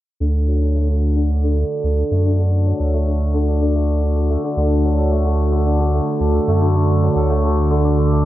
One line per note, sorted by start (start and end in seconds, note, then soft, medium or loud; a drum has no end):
0.20 1.64 D2 medium
0.20 0.87 D3 medium
0.20 8.25 D3 medium
0.20 8.25 A3 medium
0.20 8.25 F#4 medium
0.47 0.94 F#3 medium
0.62 1.97 A4 medium
0.75 1.57 A3 medium
0.89 1.15 D3 medium
1.16 1.42 D3 medium
1.30 1.84 D4 medium
1.44 2.24 D3 medium
1.57 2.11 A3 medium
1.84 2.03 D2 medium
1.84 3.47 D4 medium
1.98 2.79 A4 medium
2.11 2.73 F#2 medium
2.11 2.93 A3 medium
2.25 2.38 D3 medium
2.39 3.05 D3 medium
2.66 3.12 F#3 medium
2.79 4.37 D2 medium
2.79 4.16 A4 medium
2.93 3.75 A3 medium
3.07 3.33 D3 medium
3.34 3.60 D3 medium
3.48 4.02 D4 medium
3.62 4.42 D3 medium
3.75 4.29 A3 medium
3.75 shaker medium
4.02 5.65 D4 medium
4.16 4.97 A4 medium
4.30 5.11 A3 medium
4.30 shaker medium
4.44 4.56 D3 medium
4.57 6.01 D2 medium
4.57 5.24 D3 medium
4.84 5.30 F#3 medium
4.84 shaker medium
4.98 6.34 A4 medium
5.11 5.93 A3 medium
5.11 shaker soft
5.25 5.51 D3 medium
5.39 shaker medium
5.52 5.78 D3 medium
5.52 shaker soft
5.66 6.20 D4 medium
5.66 shaker soft
5.79 6.60 D3 medium
5.93 6.48 A3 medium
5.93 shaker medium
6.07 shaker soft
6.20 6.40 D2 medium
6.20 7.84 D4 medium
6.20 shaker soft
6.34 7.16 A4 medium
6.34 shaker soft
6.48 7.10 F#2 medium
6.48 7.29 A3 medium
6.48 shaker medium
6.61 6.74 D3 medium
6.61 shaker soft
6.66 shaker soft
6.71 shaker soft
6.75 7.42 D3 medium
6.75 shaker soft
6.80 shaker soft
6.84 shaker soft
7.02 7.48 F#3 medium
7.02 shaker medium
7.16 8.25 D2 medium
7.16 8.25 A4 medium
7.16 shaker soft
7.30 8.11 A3 medium
7.30 shaker soft
7.43 7.69 D3 medium
7.43 shaker soft
7.57 shaker medium
7.71 7.97 D3 medium
7.71 shaker soft
7.84 8.25 D4 medium
7.84 shaker soft
7.98 8.25 D3 medium
8.12 8.25 A3 medium
8.12 shaker soft
8.16 shaker soft
8.21 shaker medium